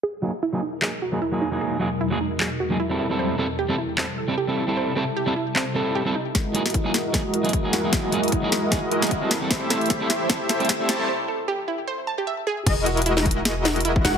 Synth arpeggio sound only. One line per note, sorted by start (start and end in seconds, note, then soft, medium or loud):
0.03 0.06 G#4 medium
0.23 0.29 F#4 medium
0.43 0.45 E4 medium
0.63 0.65 D#4 medium
0.82 0.85 G#4 medium
1.02 1.08 F#4 medium
1.22 1.24 E4 loud
1.42 1.44 D#4 medium
1.61 1.64 G#4 medium
1.81 1.87 F#4 medium
2.01 2.03 E4 loud
2.21 2.23 D#4 medium
2.40 2.43 G#4 medium
2.60 2.66 F#4 medium
2.80 2.82 E4 loud
2.99 3.02 E4 medium
3.19 3.22 C5 medium
3.39 3.45 A4 medium
3.59 3.61 G4 loud
3.78 3.81 E4 medium
3.98 4.01 C5 medium
4.18 4.24 A4 medium
4.38 4.40 G4 loud
4.57 4.60 E4 medium
4.77 4.80 C5 medium
4.97 5.03 A4 medium
5.17 5.19 G4 loud
5.36 5.39 E4 medium
5.56 5.59 C5 medium
5.76 5.82 A4 medium
5.95 5.98 G4 loud
6.15 6.18 D#4 medium
6.35 6.38 G#4 medium
6.55 6.61 F#4 medium
6.75 6.77 E4 loud
6.94 6.97 D#4 medium
7.14 7.16 G#4 medium
7.34 7.40 F#4 medium
7.53 7.56 E4 loud
7.73 7.76 D#4 medium
7.93 7.95 G#4 medium
8.13 8.19 F#4 medium
8.32 8.35 E4 loud
8.52 8.55 D#4 medium
8.72 8.74 G#4 medium
8.91 8.98 F#4 medium
9.11 9.14 E4 loud
9.31 9.33 E4 medium
9.51 9.53 C5 medium
9.70 9.77 A4 medium
9.90 9.93 G4 loud
10.10 10.12 E4 medium
10.30 10.32 C5 medium
10.49 10.56 A4 medium
10.69 10.72 G4 loud
10.89 10.91 E4 medium
11.09 11.11 C5 medium
11.28 11.35 A4 medium
11.48 11.51 G4 loud
11.68 11.70 E4 medium
11.88 11.90 C5 medium
12.07 12.12 A5 medium
12.18 12.23 G4 medium
12.27 12.33 E5 medium
12.47 12.51 G#4 loud
12.67 12.69 G#4 medium
12.86 12.93 F#4 medium
13.06 13.09 E4 loud
13.26 13.28 D#4 medium
13.46 13.48 G#4 medium
13.65 13.72 F#4 medium
13.85 13.88 E4 loud
14.05 14.07 D#4 medium